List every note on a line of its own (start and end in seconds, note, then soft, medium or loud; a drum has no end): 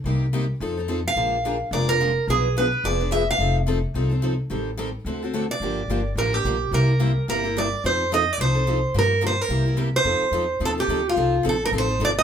0.04 0.49 C2 medium
0.04 0.24 C3 medium
0.04 0.24 G3 medium
0.04 0.24 A#3 medium
0.04 0.25 D#4 medium
0.04 0.25 G4 medium
0.33 0.44 C3 medium
0.33 0.44 G3 medium
0.33 0.44 A#3 medium
0.33 0.44 D#4 medium
0.33 0.44 G4 medium
0.60 1.05 F2 medium
0.60 0.76 F3 medium
0.60 0.77 C4 medium
0.60 0.77 D#4 medium
0.60 0.76 A4 medium
0.77 0.87 C4 soft
0.77 0.88 D#4 soft
0.77 0.88 A4 medium
0.88 0.99 F3 medium
0.88 0.99 C4 medium
0.88 0.99 D#4 medium
0.88 1.00 A4 medium
1.08 1.70 F5 medium
1.16 1.61 A#1 medium
1.16 1.35 D3 medium
1.16 1.35 F3 medium
1.16 1.35 G#3 medium
1.16 1.36 A#3 medium
1.16 1.36 D4 medium
1.16 1.36 F4 medium
1.16 1.36 G#4 medium
1.16 1.36 A#4 medium
1.43 1.54 D3 medium
1.43 1.55 F3 medium
1.43 1.55 G#3 medium
1.43 1.55 A#3 medium
1.43 1.55 D4 medium
1.43 1.56 F4 medium
1.43 1.56 G#4 medium
1.43 1.56 A#4 medium
1.71 2.16 F1 medium
1.71 1.91 D3 medium
1.71 1.88 F3 medium
1.71 1.88 G#3 medium
1.71 1.91 A#3 medium
1.71 1.88 D4 medium
1.71 1.88 F4 medium
1.71 1.91 G#4 medium
1.71 1.87 A#4 medium
1.71 1.89 D5 medium
1.88 1.99 D4 soft
1.88 1.99 F4 soft
1.88 2.00 A#4 medium
1.88 2.26 A#4 medium
2.00 2.10 D3 medium
2.00 2.11 F3 medium
2.00 2.11 G#3 medium
2.00 2.11 A#3 medium
2.00 2.11 D4 medium
2.00 2.11 F4 medium
2.00 2.11 G#4 medium
2.00 2.11 A#4 medium
2.27 2.72 B1 medium
2.27 2.47 B2 medium
2.27 2.47 F3 medium
2.27 2.47 B3 medium
2.27 2.48 D4 medium
2.27 2.48 G#4 medium
2.27 2.55 G#4 medium
2.27 2.48 B4 medium
2.57 2.67 B2 medium
2.57 2.67 F3 medium
2.57 2.67 B3 medium
2.57 2.67 D4 loud
2.57 2.67 G#4 medium
2.57 2.85 B4 medium
2.57 2.67 B4 medium
2.84 3.28 F1 medium
2.84 2.99 B2 medium
2.84 3.00 F3 medium
2.84 3.00 B3 medium
2.84 3.00 D4 medium
2.84 2.99 G#4 medium
2.84 2.99 B4 medium
2.84 3.12 D5 medium
3.00 3.11 B3 soft
3.00 3.11 D4 soft
3.00 3.11 G#4 medium
3.00 3.11 B4 medium
3.11 3.22 B2 medium
3.11 3.22 F3 medium
3.11 3.22 B3 medium
3.11 3.22 D4 medium
3.11 3.22 G#4 medium
3.11 3.23 B4 medium
3.11 3.27 E5 medium
3.31 3.55 F5 medium
3.38 3.83 F1 loud
3.38 3.58 F3 medium
3.38 3.58 C4 medium
3.38 3.59 D#4 medium
3.38 3.59 A4 medium
3.67 3.77 F3 medium
3.67 3.78 C4 medium
3.67 3.78 D#4 medium
3.67 3.78 A4 medium
3.94 4.39 C2 medium
3.94 4.10 F3 medium
3.94 4.10 C4 medium
3.94 4.10 D#4 medium
3.94 4.08 A4 medium
4.10 4.21 C4 soft
4.10 4.22 D#4 medium
4.10 4.22 A4 medium
4.22 4.33 F3 medium
4.22 4.33 C4 medium
4.22 4.33 D#4 medium
4.22 4.34 A4 medium
4.50 4.95 A1 medium
4.50 4.69 D#3 medium
4.50 4.69 G3 medium
4.50 4.69 C4 medium
4.50 4.69 G4 medium
4.50 4.70 A4 medium
4.78 4.88 D#3 medium
4.78 4.88 G3 medium
4.78 4.89 C4 medium
4.78 4.89 G4 medium
4.78 4.89 A4 medium
5.05 5.50 D2 medium
5.05 5.21 D3 medium
5.05 5.21 A3 medium
5.05 5.22 C4 medium
5.05 5.22 F#4 medium
5.05 5.21 A4 medium
5.22 5.33 C4 soft
5.22 5.33 F#4 medium
5.22 5.33 A4 medium
5.33 5.44 D3 medium
5.33 5.44 A3 medium
5.33 5.45 C4 medium
5.33 5.44 F#4 medium
5.33 5.44 A4 medium
5.51 6.14 D5 medium
5.60 5.83 G1 medium
5.60 5.80 D3 medium
5.60 5.80 F3 medium
5.60 5.80 A#3 medium
5.60 5.81 D4 medium
5.60 5.81 G4 medium
5.88 6.12 G1 medium
5.88 6.00 D3 medium
5.88 6.00 F3 medium
5.88 6.00 A#3 medium
5.88 6.00 D4 medium
5.88 6.01 G4 medium
6.15 6.40 A1 medium
6.15 6.33 D3 medium
6.15 6.32 F3 medium
6.15 6.33 A#3 medium
6.15 6.33 D4 medium
6.15 6.32 G4 medium
6.15 6.34 A#4 medium
6.33 6.45 A#3 soft
6.33 6.45 D4 soft
6.33 6.44 G4 medium
6.33 6.73 G4 medium
6.44 6.68 A#1 medium
6.44 6.56 D3 medium
6.44 6.55 F3 medium
6.44 6.56 A#3 medium
6.44 6.56 D4 medium
6.44 6.56 G4 medium
6.71 7.16 C2 medium
6.71 6.91 C3 medium
6.71 6.91 G3 medium
6.71 6.92 A#3 medium
6.71 6.92 E4 medium
6.71 6.92 G4 medium
6.71 7.25 A#4 medium
6.99 7.10 C3 medium
6.99 7.11 G3 medium
6.99 7.10 A#3 medium
6.99 7.11 E4 medium
6.99 7.11 G4 loud
7.28 7.72 G1 medium
7.28 7.43 C3 medium
7.28 7.44 G3 medium
7.28 7.44 A#3 medium
7.28 7.44 E4 medium
7.28 7.42 G4 medium
7.28 7.57 A#4 medium
7.44 7.55 A#3 soft
7.44 7.56 E4 soft
7.44 7.55 G4 medium
7.57 7.67 C3 medium
7.57 7.67 G3 medium
7.57 7.67 A#3 medium
7.57 7.67 E4 medium
7.57 7.67 G4 medium
7.57 7.83 D5 medium
7.84 8.28 F2 medium
7.84 8.03 F3 medium
7.84 8.03 C4 medium
7.84 8.03 D#4 medium
7.84 8.04 A4 medium
7.84 8.13 C5 medium
8.12 8.22 F3 medium
8.12 8.22 C4 medium
8.12 8.22 D#4 medium
8.12 8.23 A4 medium
8.12 8.33 D#5 medium
8.33 8.40 D5 medium
8.38 8.83 C2 medium
8.38 8.54 F3 medium
8.38 8.55 C4 medium
8.38 8.55 D#4 medium
8.38 8.54 A4 medium
8.38 8.97 C5 loud
8.55 8.66 C4 soft
8.55 8.66 D#4 medium
8.55 8.66 A4 medium
8.67 8.77 F3 medium
8.67 8.77 C4 medium
8.67 8.77 D#4 medium
8.67 8.78 A4 medium
8.94 9.39 G2 medium
8.94 9.13 D3 medium
8.94 9.13 F3 medium
8.94 9.13 A#3 medium
8.94 9.14 D4 medium
8.94 9.14 G4 medium
8.99 9.22 A#4 medium
9.21 9.32 D3 medium
9.21 9.32 F3 medium
9.21 9.33 A#3 medium
9.21 9.33 D4 medium
9.21 9.33 G4 medium
9.27 9.41 C5 medium
9.41 9.79 A#4 medium
9.49 9.94 C2 medium
9.49 9.65 C3 medium
9.49 9.65 G3 medium
9.49 9.65 A#3 medium
9.49 9.65 E4 medium
9.49 9.65 G4 medium
9.66 9.76 E4 medium
9.66 9.77 G4 soft
9.77 9.88 C3 medium
9.77 9.88 G3 medium
9.77 9.88 A#3 medium
9.77 9.88 E4 medium
9.77 9.88 G4 medium
9.96 10.64 C5 medium
10.04 10.20 F2 medium
10.04 10.24 F3 medium
10.04 10.24 C4 medium
10.04 10.24 D#4 medium
10.04 10.24 A4 medium
10.21 muted upright bass stroke soft
10.31 10.59 E2 medium
10.31 10.43 F3 medium
10.31 10.43 C4 medium
10.31 10.44 D#4 medium
10.31 10.44 A4 medium
10.60 10.87 D#2 medium
10.60 10.76 F3 medium
10.60 10.76 C4 medium
10.60 10.76 D#4 medium
10.60 10.77 A4 medium
10.65 10.70 A4 medium
10.78 10.88 C4 soft
10.78 10.89 D#4 soft
10.78 11.07 G4 medium
10.78 10.89 A4 medium
10.88 11.15 D2 medium
10.88 10.99 F3 medium
10.88 10.99 C4 medium
10.88 11.00 D#4 medium
10.88 11.00 A4 medium
11.09 11.44 F4 medium
11.16 11.43 C2 medium
11.16 11.35 F3 medium
11.16 11.36 C4 medium
11.16 11.36 D#4 medium
11.16 11.36 A4 medium
11.43 11.71 A#1 medium
11.43 11.54 F3 medium
11.43 11.55 C4 medium
11.43 11.55 D#4 medium
11.43 11.55 A4 medium
11.49 11.63 A4 medium
11.65 11.70 A#4 medium
11.72 11.98 A1 medium
11.72 11.88 F3 medium
11.72 11.88 C4 medium
11.72 11.88 D#4 medium
11.72 11.88 A4 medium
11.78 12.04 C5 medium
11.89 12.00 C4 soft
11.89 12.00 D#4 medium
11.89 12.00 A4 medium
11.99 12.23 G1 medium
11.99 12.10 F3 medium
11.99 12.11 C4 medium
11.99 12.11 D#4 medium
11.99 12.11 A4 medium
12.05 12.10 D5 medium
12.19 12.23 D#5 medium